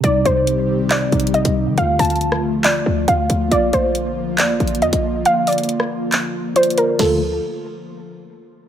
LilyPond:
<<
  \new Staff \with { instrumentName = "Synth pluck" } { \time 4/4 \key d \phrygian \tempo 4 = 138 d''8 c''4. d''4 ees''4 | f''8 a''4. d''4 f''4 | d''8 c''4. d''4 ees''4 | f''8 d''2~ d''8 c''8 bes'8 |
a'8 r2. r8 | }
  \new Staff \with { instrumentName = "Tine electric piano" } { \time 4/4 \key d \phrygian <c g ees'>2~ <c g ees'>8 <c g ees'>4. | <d a f'>1 | <bes f' f''>1~ | <bes f' f''>2. <bes f' d''>4 |
<d a f'>8 r2. r8 | }
  \new Staff \with { instrumentName = "Analog synth pad" } { \time 4/4 \key d \phrygian << { <ees g g'>1 | <d f f'>1~ | <d f f'>1~ | <d f f'>1 |
<d f a f'>8 r2. r8 | } \\ { c'1 | a1 | bes1~ | bes1 |
r1 | } >> }
  \new Staff \with { instrumentName = "808-style bass" } { \clef bass \time 4/4 \key d \phrygian c,8 c,2 bes,,8. c,8 ees16 | d,8 d,2 d,8 d,8 d,8 | bes,,8 bes,,4. f,16 bes,,16 a,,8 f,16 bes,,8. | r1 |
d,4 r2. | }
  \new DrumStaff \with { instrumentName = "Drums" } \drummode { \time 4/4 hh8 hh8 hh4 \tuplet 3/2 { <hc hh>16 r16 r16 hh16 hh16 hh16 } hh16 hh8. | hh8 <hh hho>32 hh32 hh32 hh32 hh16 ss8. <hc hh>4 hh8 hh8 | hh8 hh8 hh4 \tuplet 3/2 { <hc hh>16 r16 r16 hh16 hh16 hh16 } hh16 hh8. | hh8 <hh hho>32 hh32 hh32 hh32 hh16 ss8. <hc hh>4 \tuplet 3/2 { hh16 hh16 hh16 hh16 r16 r16 } |
<cymc sn>4 r4 r4 r4 | }
>>